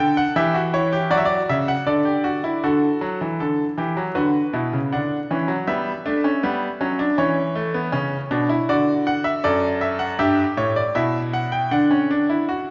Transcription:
Already playing: A4
0.00 D3 G5
0.17 F#5
0.36 E3 G4 E5
0.54 F#4
0.73 E4 C#5
0.93 G4
1.11 F#3 F#4 D5
1.18 E5
1.25 D5
1.49 C#3 E5
1.68 F#5
1.86 D3 A4 D5
2.05 G4
2.24 F#4
2.44 E4
2.64 D3 F#4 A4
3.01 F#3
3.21 E3
3.40 D3 A4
3.78 E3 G4
3.97 F#3
4.15 D3 F#4 B4
4.53 B2 E4
4.73 C#3
4.92 D3 D4 F#5
5.31 E3 C#4
5.48 F#3
5.67 G3 B3 E5
6.06 A3 D4
6.24 C#4
6.43 G3 B3
6.81 F#3 C#4
6.99 D4
7.18 E3 C#4 C#5
7.55 A3
7.74 B3
7.92 C#3 C#4
8.31 B2 D4
8.49 E4
8.69 D3 F#4 D5
9.07 F#5
9.24 E5
9.44 F#2 A4 D5
9.81 E5
9.99 F#5
10.19 G2 G4 E5
10.57 A2 C#5
10.76 D5
10.95 B2 E4 E5
11.33 F#5
11.52 G5
11.71 D3 D4 F#5
11.91 C#4
12.11 D4
12.29 E4
12.49 F#4

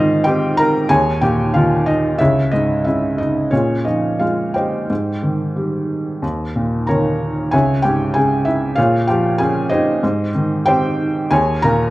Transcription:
Already playing: G#2 D#3 D#4 F4 C5 D#5 F5
0.24 C4 G4 G5
0.57 A#4 A#5
0.89 D#2 G#4 C#5 G#5
1.21 A#2 G4 G5
1.54 D#3 F4 F5
1.86 D#4 D#5
2.18 C#2 E4 G#4 C#5 E5
2.51 G#2 D#4 D#5
2.84 C#3 E4 E5
3.18 D#4 D#5
3.51 A#2 C#4 F4 G#4 C#5
3.85 F3 D#4 D#5
4.19 G#3 F4 F5
4.54 G4 C5 D#5 G5
4.90 G#2
5.23 D#3
5.56 G3
6.22 D#2
6.56 A#2
6.87 D#3 A#4 C#5 A#5
7.51 C#2 G#4 C#5 E5 G#5
7.82 G#2 G4 G5
8.14 C#3 G#4 G#5
8.45 E4 E5
8.76 A#2 F4 G#4 C#5 F5
9.07 F3 G4 G5
9.38 C#4 G#4 G#5
9.69 D#4 G4 C5 D#5
10.03 G#2
10.35 D#3
10.66 C4 G4 C5 G5
11.31 D#2 G#4 C#5 G#5
11.62 A#2 A#4 A#5

